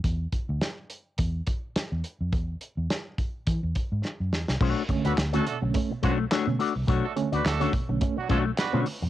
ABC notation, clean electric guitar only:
X:1
M:4/4
L:1/16
Q:"Swing 16ths" 1/4=106
K:Bm
V:1 name="Clean electric guitar"
z16 | z16 | [A,DFc] z2 [A,DFc] z [A,DFc] z4 [A,DFc] z [A,DFc] z [A,DFd] z | [A,DFc] z2 [A,DFd] z [A,DFc] z4 [A,DFc] z2 [A,DFc] z2 |]